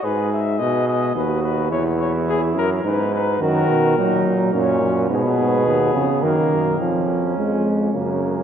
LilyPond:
<<
  \new Staff \with { instrumentName = "Cornet" } { \time 3/4 \key gis \minor \tempo 4 = 107 b'8 e''8 dis''8 dis''8 b'8 b'8 | cis''8 cis''8 gis'8 ais'8 b'8 b'8 | ais'4. r8 cis''4 | gis'2 ais'4 |
r2. | }
  \new Staff \with { instrumentName = "Flugelhorn" } { \time 3/4 \key gis \minor gis'8 r8 gis'4 fis'4 | e'2 dis'4 | fis'4 dis'4 cis'4 | b2 ais4 |
cis'2 ais4 | }
  \new Staff \with { instrumentName = "Euphonium" } { \clef bass \time 3/4 \key gis \minor r2. | r2. | dis4 fis4 ais,4 | b,4. cis8 dis4 |
eis4 gis4 cis4 | }
  \new Staff \with { instrumentName = "Bass trombone" } { \clef bass \time 3/4 \key gis \minor gis,4 b,4 dis,4 | e,4. fis,8 gis,4 | fis,8 b,8 ais,8 ais,8 fis,8 fis,8 | gis,8 gis,8 dis,8 eis,8 fis,8 fis,8 |
eis,4 eis,4 fis,4 | }
>>